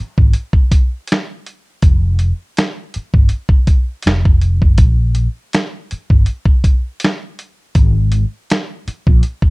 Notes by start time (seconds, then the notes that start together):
0.18 G#1, kick
0.33 closed hi-hat
0.53 kick
0.72 kick, closed hi-hat
1.07 closed hi-hat
1.12 finger snap, snare
1.46 closed hi-hat
1.82 F1, kick, closed hi-hat
2.19 closed hi-hat
2.57 finger snap, snare, closed hi-hat
2.94 muted fretless electric bass stroke, closed hi-hat
3.14 G1, kick
3.29 closed hi-hat
3.49 kick
3.67 kick, closed hi-hat
4.03 F1, closed hi-hat
4.07 finger snap, snare
4.25 kick
4.42 closed hi-hat
4.62 kick
4.78 A#1, kick, closed hi-hat
5.15 closed hi-hat
5.53 finger snap, snare, closed hi-hat
5.91 muted fretless electric bass stroke, closed hi-hat
6.10 G1, kick
6.26 closed hi-hat
6.45 kick
6.64 kick, closed hi-hat
7.00 closed hi-hat
7.04 finger snap, snare
7.39 closed hi-hat
7.75 G#1, kick, closed hi-hat
8.12 closed hi-hat
8.50 finger snap, snare, closed hi-hat
8.87 muted fretless electric bass stroke, closed hi-hat
9.07 A#1, kick
9.23 closed hi-hat
9.42 kick